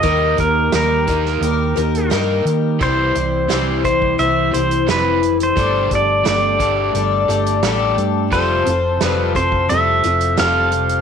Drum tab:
HH |x-x-x-x-x-xxx-x-|x-x-x-x-x-xxx-xx|x-x-x-x-x-xxx-x-|x-x-x-x-x-xxx-xx|
SD |----o--o----o---|----o-------o---|----o-------o---|----o-------o---|
BD |o-o---o---------|o-----oo--------|o-o---o---------|o-----oo--------|